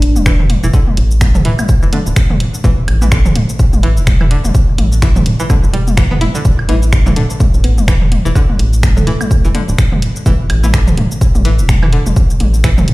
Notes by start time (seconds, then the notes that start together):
Already playing: A1 D4
0.02 closed hi-hat
0.16 E1, high tom, shaker
0.26 E3, finger snap, kick, high woodblock, shaker
0.40 mid tom
0.50 closed hi-hat, high tom
0.64 E1 E3, shaker
0.73 D3, kick, shaker
0.87 high tom
0.97 A1, closed hi-hat
1.11 shaker
1.21 finger snap, kick, high tom, shaker
1.35 mid tom, shaker
1.45 D1 E3, closed hi-hat
1.59 high tom, high woodblock, shaker
1.69 kick, shaker
1.83 G1 E3, shaker
1.93 D3, closed hi-hat, high tom
2.06 D1, shaker
2.16 finger snap, kick, shaker
2.30 mid tom, high tom
2.40 closed hi-hat
2.54 shaker
2.64 E1 E3, kick, high tom, shaker
2.88 A1, closed hi-hat, high woodblock
3.02 E3, high tom, shaker
3.12 D3, finger snap, kick, shaker
3.26 mid tom, shaker
3.36 D1, closed hi-hat, high tom
3.49 shaker
3.59 kick, shaker
3.73 A1, high tom, shaker
3.83 E3, closed hi-hat
3.97 E1, shaker
4.07 finger snap, kick, high tom, shaker
4.21 E3, mid tom, high woodblock
4.31 D3, closed hi-hat
4.45 E1, high tom, shaker
4.55 kick, shaker
4.78 A1, closed hi-hat, high tom
4.92 shaker
5.02 E3, finger snap, kick, shaker
5.16 mid tom, high tom, shaker
5.26 D1, closed hi-hat
5.40 E3, shaker
5.50 D3, kick, high tom, high woodblock, shaker
5.64 G1, shaker
5.73 E1 G3, closed hi-hat
5.87 high tom, shaker
5.97 E3, finger snap, kick, shaker
6.11 B3, mid tom
6.21 E4, closed hi-hat, high tom
6.35 D3, shaker
6.45 E1, kick, shaker
6.59 high woodblock
6.69 A1 E3 E4, closed hi-hat, high tom
6.83 shaker
6.93 finger snap, kick, shaker
7.06 E3, mid tom, high tom, shaker
7.16 D1 D3, closed hi-hat
7.30 shaker
7.40 kick, high tom, shaker
7.54 A1, shaker
7.64 B3, closed hi-hat
7.78 E1, high tom, shaker
7.88 E3, finger snap, kick, high woodblock, shaker
8.02 mid tom
8.12 closed hi-hat, high tom
8.25 E1 E3, shaker
8.35 D3, kick, shaker
8.49 high tom
8.59 A1, closed hi-hat
8.73 shaker
8.83 finger snap, kick, high tom, shaker
8.97 A3, mid tom, shaker
9.07 D1 E3, closed hi-hat
9.21 high tom, high woodblock, shaker
9.31 kick, shaker
9.45 G1 E3, shaker
9.55 D3, closed hi-hat, high tom
9.68 D1, shaker
9.78 finger snap, kick, shaker
9.92 mid tom, high tom
10.02 closed hi-hat
10.16 shaker
10.26 E1 E3, kick, high tom, shaker
10.50 A1, closed hi-hat, high woodblock
10.64 E3, high tom, shaker
10.74 D3, finger snap, kick, shaker
10.87 mid tom, shaker
10.97 D1, closed hi-hat, high tom
11.11 shaker
11.21 kick, shaker
11.35 A1, high tom, shaker
11.45 E3, closed hi-hat
11.59 E1, shaker
11.69 finger snap, kick, high tom, shaker
11.83 E3, mid tom, high woodblock
11.93 D3, closed hi-hat
12.06 E1, high tom, shaker
12.16 kick, shaker
12.30 shaker
12.40 A1, closed hi-hat, high tom
12.54 shaker
12.64 E3, finger snap, kick, shaker
12.78 mid tom, high tom, shaker
12.88 D1, closed hi-hat